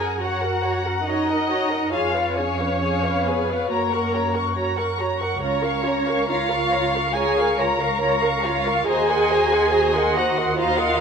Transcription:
Already playing: F#2 G#4 G#5
0.00 A#4 F#5 A#5
0.20 F#4 C#5 F#5 A#5
0.43 A#4 F#5 A#5
0.64 F#4 C#5 F#5 A#5
0.85 A#4 F#5 A#5
1.07 D#4 F#4 C#5 D#5 F#5 A#5
1.28 A#4 F#5 A#5
1.49 F#4 C#5 F#5 A#5
1.70 A#4 F#5 A#5
1.91 F2 F4 G#4 C#5 F5 G#5
2.13 B4 C#5 F5
2.36 C#4 G#4 C#5 F5 G#5
2.59 B4 C#5 F5
2.82 G#4 C#5 F5 G#5
3.04 B4 C#5 F5
3.26 B3 G#4 B4 C#5 F5 G#5
3.48 B4 C#5 F5
3.70 F#2 A#3 F#4 A#4 C#5 A#5
3.91 A#4 F#5 C#6
4.14 F#4 C#5 A#5
4.34 A#4 F#5 C#6
4.56 F#4 C#5 A#5
4.77 A#4 F#5 C#6
4.99 F#4 C#5 A#5
5.20 A#4 F#5 C#6
5.42 C#2 C#4 F4 C#5 A#5
5.63 A#4 F5 C#6
5.84 F4 C#5 A#5
6.07 A#4 F5 C#6
6.28 F4 C#5 F5 A#5
6.50 A#4 F5 C#6
6.72 F4 C#5 A#5
6.94 A#4 F5 C#6
7.14 F4 G#4 C#5 G#5 A#5
7.37 A#4 F5 C#6
7.57 F4 A#4 C#5 A#5
7.80 A#4 F5 C#6
8.01 F4 C#5 A#5
8.21 A#4 F5 C#6
8.43 F4 C#5 F5 A#5
8.65 A#4 F5 C#6
8.87 D#2 F#4 G#4 C5 D#5 G#5 A#5
9.10 A#4 D#5 F#5 C6
9.31 F#4 C5 D#5 A#5
9.52 A#4 D#5 F#5 C6
9.74 F#4 C5 D#5 A#5
9.94 A#4 D#5 F#5 C6
10.15 F#4 C5 D#5 F#5 A#5
10.37 A#4 D#5 F#5 C6
10.57 F4 F#4 C5 D#5 F5 A#5
10.78 A#4 D#5 F#5 C6

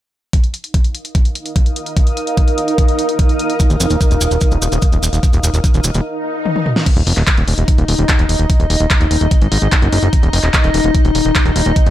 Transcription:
0.33 D#4, kick, closed hi-hat
0.44 closed hi-hat
0.54 F5, closed hi-hat
0.60 A#4
0.64 closed hi-hat
0.71 D#6, kick, closed hi-hat
0.84 closed hi-hat
0.95 closed hi-hat
1.05 closed hi-hat
1.15 kick, closed hi-hat
1.25 closed hi-hat
1.35 closed hi-hat
1.46 closed hi-hat
1.56 kick, closed hi-hat
1.66 closed hi-hat
1.76 closed hi-hat
1.86 closed hi-hat
1.97 kick, closed hi-hat
2.07 closed hi-hat
2.17 closed hi-hat
2.27 closed hi-hat
2.37 kick, closed hi-hat
2.48 closed hi-hat
2.58 closed hi-hat
2.68 closed hi-hat
2.78 kick, closed hi-hat
2.88 closed hi-hat
2.99 closed hi-hat
3.09 closed hi-hat
3.19 kick, closed hi-hat
3.29 closed hi-hat
3.39 closed hi-hat
3.50 closed hi-hat
3.60 kick, closed hi-hat, maracas
3.70 D#1, closed hi-hat, maracas
3.80 F1, closed hi-hat, maracas
3.90 D#1, closed hi-hat, maracas
4.01 kick, closed hi-hat, maracas
4.11 D#1, closed hi-hat, maracas
4.21 D#1, closed hi-hat, maracas
4.31 D#1, closed hi-hat, maracas
4.41 kick, closed hi-hat, maracas
4.51 D#1, closed hi-hat, maracas
4.62 D#1, closed hi-hat, maracas
4.72 D#1, closed hi-hat, maracas
4.82 kick, closed hi-hat, maracas
4.92 D#1, closed hi-hat, maracas
5.03 D#1, closed hi-hat, maracas
5.13 D#1, closed hi-hat, maracas
5.23 kick, closed hi-hat, maracas
5.33 D#1, closed hi-hat, maracas
5.43 D#1, closed hi-hat, maracas
5.54 D#1, closed hi-hat, maracas
5.64 kick, closed hi-hat, maracas
5.74 D#1, closed hi-hat, maracas
5.84 D#1, closed hi-hat, maracas
5.94 D#1, closed hi-hat, maracas
6.05 swell
6.46 high tom
6.56 high tom
6.66 mid tom
6.76 snare
6.86 D#4 D#5, kick, closed hi-hat, crash
6.97 D#1, closed hi-hat
7.07 F1, open hi-hat
7.17 D#1, clap, closed hi-hat
7.27 kick, clap, closed hi-hat
7.37 D#1, closed hi-hat
7.48 D#1, open hi-hat
7.58 D#1, closed hi-hat
7.68 kick, closed hi-hat
7.78 D#1, closed hi-hat
7.88 D#1, open hi-hat
7.99 D#1, closed hi-hat
8.09 kick, clap, closed hi-hat
8.19 D#1, closed hi-hat
8.29 D#1, open hi-hat
8.39 D#1, closed hi-hat
8.50 kick, closed hi-hat
8.60 D#1, closed hi-hat
8.70 D#1, open hi-hat
8.80 D#1, closed hi-hat
8.90 kick, clap, closed hi-hat
9.01 D#1, closed hi-hat
9.11 D#1, open hi-hat
9.21 D#1, closed hi-hat
9.31 kick, closed hi-hat
9.41 G#1, closed hi-hat
9.52 G#1, open hi-hat
9.62 G#1, closed hi-hat
9.72 kick, clap, closed hi-hat
9.82 F#1, closed hi-hat
9.92 F#1, open hi-hat
10.03 F#1, closed hi-hat
10.13 kick, closed hi-hat
10.23 D#1, closed hi-hat
10.33 F1, open hi-hat
10.44 D#1, clap, closed hi-hat
10.54 kick, clap, closed hi-hat
10.64 D#1, closed hi-hat
10.74 D#1, open hi-hat
10.84 D#1, closed hi-hat
10.95 kick, closed hi-hat
11.05 D#1, closed hi-hat
11.15 D#1, open hi-hat
11.25 D#1, closed hi-hat
11.35 kick, clap, closed hi-hat
11.46 D#1, closed hi-hat
11.56 D#1, open hi-hat
11.66 D#1, closed hi-hat
11.76 kick, closed hi-hat
11.86 D#1, closed hi-hat

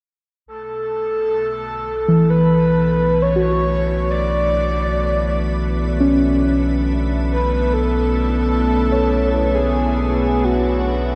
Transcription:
0.46 B1 B2 B3 A4
0.94 A3
1.18 D3
2.08 E3
2.30 B4
2.53 E4
3.22 C#5
3.36 F#4 B4
4.11 D5
6.00 C#4
7.31 B4
7.73 A4
8.92 C#5
9.55 G#4
10.25 D4
10.45 F#4

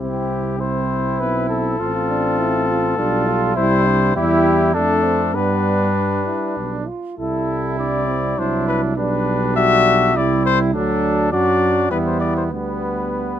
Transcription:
0.00 C2 C4 E4 G4
0.59 C4 E4 C5
1.20 B1 E4 B4
1.50 A4
1.80 A1 C4 F4
2.10 D4
2.39 E4
2.69 F4
2.97 B1 G3 D4 F4
3.27 F4
3.56 C2 G3 E4 C5
3.86 D4
4.15 E2 G3 E4 G4
4.74 F2 A3 D4 A4
5.04 C4
5.33 G2 G3 B3 D4 B4
5.95 D4
6.26 E4
6.56 B1 D4
6.87 F4
7.18 C2 G3 E4 A4
7.79 D4 D5
8.08 C4
8.38 C2 F#3 D4 E4 C5
8.68 B4
8.96 B1 G3 D4 B4
9.56 F#4 E5
10.16 C2 G3 E4 D5
10.46 C5
10.74 D2 F#3 D4 A4
11.32 F#2 F#3 D4 F#4 D5
11.91 E2 G3 B3 E4 B4
12.06 C5
12.20 D5
12.37 C5
12.52 D2 G3 B3 B4

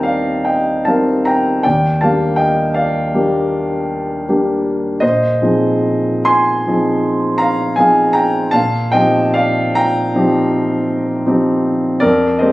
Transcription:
Already playing: D#2 G3 C4 D#4 A#4 C5 D5 D#5 F5 G5 A5 A#5
0.03 D5 F5
0.45 D#5 G5
0.85 G3 C4 D#4 A#4 F5 A5
1.25 G5 A#5
1.63 D#2 D5 G5
2.01 G3 A#3 D4 G4 F5 A5
2.36 D#5 G5
2.74 D5 F5
3.14 G3 A#3 D4 G4
4.29 G3 A#3 D4 G4
5.00 A#2 C5 D#5
5.42 F3 C4 D#4 G#4
6.25 G#5 C6
6.67 F3 C4 D#4 G#4
7.38 F5 A#5
7.76 F3 C4 D#4 F5 G#5
7.80 G#4
8.13 G5 A#5
8.51 A#2 F5 A5
8.92 F3 C4 D#4 G4 D#5 G5
9.34 D5 F5
9.75 G5 A#5
10.15 F3 C4 D#4 G4
11.26 F3 C4 D#4 G4
12.00 F2 A#4 D5
12.39 G#3 A#3 C4 G4 C5 D#5

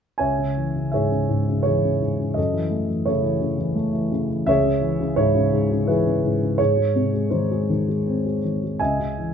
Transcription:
0.18 C#2 C#5 E5 G#5
0.38 C#3
0.57 E3
0.75 C#3
0.92 G#2 G#4 C#5 E5
1.11 C#3
1.29 G#2
1.48 C#3
1.63 E3 E4 G#4 C#5
1.84 C#3
2.01 G#2
2.19 C#3
2.34 F#2 A4 D#5
2.54 E3
2.71 A3
2.88 E3
3.06 C#3 E4 A4 C#5
3.23 E3
3.41 C#3
3.58 E3
3.75 A3
3.93 E3
4.12 C#3
4.30 E3
4.46 C#2 G#4 C#5 E5
4.63 C#3
4.81 E3
5.00 C#3
5.16 G#2 E4 G#4 C#5
5.35 C#3
5.53 G#2
5.71 C#3
5.87 E3 E4 G#4 B4
6.06 C#3
6.24 G#2
6.43 C#3
6.58 G#2 G#4 C#5
6.77 G#3
6.96 C3
7.13 G#3
7.30 D#3 D#4 G#4 C5
7.52 G#3
7.70 D#3
7.89 G#3
8.07 C4
8.26 G#3
8.45 D#3
8.64 G#3
8.79 C#2 D#5 E5 G#5
9.00 C#3
9.18 E3

